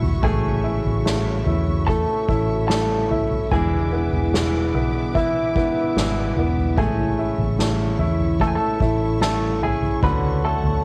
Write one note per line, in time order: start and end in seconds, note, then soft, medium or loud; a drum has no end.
0.00 0.20 E1 medium
0.00 0.23 A3 medium
0.00 0.25 E4 medium
0.00 3.48 F#4 medium
0.00 9.99 E5 medium
0.00 0.20 F#5 medium
0.00 3.48 C#6 medium
0.00 floor tom medium
0.23 0.81 A1 medium
0.23 0.64 A2 medium
0.23 0.64 E3 medium
0.23 0.65 G#3 medium
0.23 1.04 A3 medium
0.23 0.64 C#4 medium
0.23 0.62 E4 medium
0.23 1.85 G#4 medium
0.23 1.93 G#5 loud
0.23 kick loud
0.23 floor tom loud
0.64 1.05 G#3 soft
0.64 1.06 C#4 soft
0.64 1.05 E4 medium
0.64 1.46 E4 medium
0.85 1.43 A1 medium
0.85 floor tom medium
1.05 1.88 A2 medium
1.05 1.87 E3 medium
1.05 2.72 G#3 medium
1.05 1.86 A3 medium
1.05 1.88 C#4 medium
1.05 1.89 E4 medium
1.05 snare loud
1.46 2.04 E2 loud
1.46 2.27 E4 medium
1.46 floor tom medium
1.67 floor tom medium
1.87 2.29 E3 medium
1.87 2.69 A3 medium
1.87 2.28 C#4 medium
1.87 2.27 E4 medium
1.87 2.66 A4 medium
1.87 2.66 A5 loud
1.87 kick medium
2.28 3.48 A1 medium
2.28 2.70 C#4 soft
2.28 2.70 E4 medium
2.28 3.10 E4 medium
2.28 kick medium
2.68 3.11 A2 medium
2.68 3.11 E3 medium
2.68 3.50 A3 medium
2.68 3.11 C#4 medium
2.68 3.09 E4 medium
2.68 3.48 A4 medium
2.68 3.51 A5 medium
2.68 snare loud
3.10 3.53 C#4 soft
3.10 3.52 E4 medium
3.10 3.51 E4 medium
3.10 floor tom medium
3.31 floor tom medium
3.51 4.09 E1 loud
3.51 3.93 E2 medium
3.51 3.93 B2 medium
3.51 4.32 E3 medium
3.51 3.93 E3 medium
3.51 3.93 G#3 medium
3.51 3.92 D4 medium
3.51 3.91 E4 medium
3.51 5.12 G#4 medium
3.51 6.75 B4 medium
3.51 5.11 G#5 loud
3.51 6.75 D6 medium
3.51 kick loud
3.51 floor tom loud
3.92 4.33 E3 soft
3.92 4.34 G#3 soft
3.92 4.74 B3 medium
3.92 4.34 D4 medium
3.92 4.34 E4 medium
4.13 4.74 E1 medium
4.13 floor tom medium
4.33 5.15 E2 medium
4.33 5.16 B2 medium
4.33 5.15 E3 medium
4.33 5.14 E3 medium
4.33 5.15 G#3 medium
4.33 5.16 D4 medium
4.33 5.17 E4 medium
4.33 snare loud
4.74 5.55 B1 loud
4.74 5.55 B3 medium
4.74 floor tom medium
5.15 5.56 E3 medium
5.15 5.96 E3 medium
5.15 5.56 G#3 medium
5.15 5.55 D4 medium
5.15 6.34 E4 medium
5.15 5.54 E4 medium
5.15 6.33 E5 medium
5.15 kick medium
5.55 5.94 F#1 medium
5.55 5.96 E3 soft
5.55 5.96 G#3 soft
5.55 6.37 B3 medium
5.55 5.97 D4 soft
5.55 5.96 E4 medium
5.55 kick medium
5.96 6.34 G#1 medium
5.96 6.37 E2 medium
5.96 6.37 B2 medium
5.96 6.76 E3 medium
5.96 6.38 E3 medium
5.96 6.37 G#3 loud
5.96 6.36 D4 medium
5.96 6.35 E4 medium
5.96 snare loud
6.36 6.78 E1 medium
6.36 6.77 E3 medium
6.36 6.77 G#3 medium
6.36 6.77 B3 medium
6.36 6.78 D4 medium
6.36 6.77 E4 medium
6.36 floor tom medium
6.57 floor tom medium
6.77 7.34 A1 loud
6.77 7.18 A2 medium
6.77 7.18 E3 medium
6.77 7.19 G#3 loud
6.77 7.58 A3 medium
6.77 7.18 C#4 medium
6.77 10.84 E4 medium
6.77 7.16 E4 medium
6.77 8.36 G#4 medium
6.77 8.36 G#5 medium
6.77 10.84 C#6 medium
6.77 kick loud
6.77 floor tom loud
7.18 7.59 G#3 soft
7.18 7.59 C#4 medium
7.18 7.58 E4 medium
7.18 7.98 E4 medium
7.38 7.95 A1 loud
7.38 floor tom medium
7.59 8.40 A2 medium
7.59 8.38 E3 medium
7.59 8.39 G#3 medium
7.59 8.39 A3 medium
7.59 8.41 C#4 medium
7.59 8.41 E4 loud
7.59 snare loud
7.99 8.56 E2 loud
7.99 8.80 E4 medium
7.99 floor tom medium
8.19 floor tom medium
8.40 8.81 G#3 medium
8.40 9.20 A3 medium
8.40 8.80 C#4 medium
8.40 8.79 E4 medium
8.40 8.47 A4 medium
8.40 8.47 A5 loud
8.40 kick medium
8.47 8.54 G#5 medium
8.55 9.18 A4 medium
8.55 9.21 A5 loud
8.80 9.99 A1 loud
8.80 9.21 C#4 soft
8.80 9.21 E4 medium
8.80 9.61 E4 medium
8.80 kick medium
9.20 9.61 A2 medium
9.20 9.62 E3 medium
9.20 10.00 A3 medium
9.20 9.61 C#4 medium
9.20 9.60 E4 medium
9.20 9.60 A4 medium
9.20 9.63 A5 medium
9.20 snare loud
9.61 10.02 G#3 soft
9.61 10.02 C#4 medium
9.61 10.02 E4 medium
9.61 10.01 G#4 medium
9.61 10.01 G#5 loud
9.61 floor tom medium
9.82 floor tom medium
10.02 10.60 D2 loud
10.02 10.43 D3 medium
10.02 10.84 D3 medium
10.02 10.44 A3 medium
10.02 10.43 C#4 medium
10.02 10.41 F#4 medium
10.02 10.41 B4 medium
10.02 10.84 C#5 medium
10.02 10.84 F#5 medium
10.02 10.44 B5 loud
10.02 kick loud
10.02 floor tom loud
10.42 10.84 A3 medium
10.42 10.82 A3 soft
10.42 10.83 C#4 soft
10.42 10.84 F#4 medium
10.42 10.84 A4 medium
10.42 10.84 A5 medium
10.64 10.84 D2 medium
10.64 floor tom medium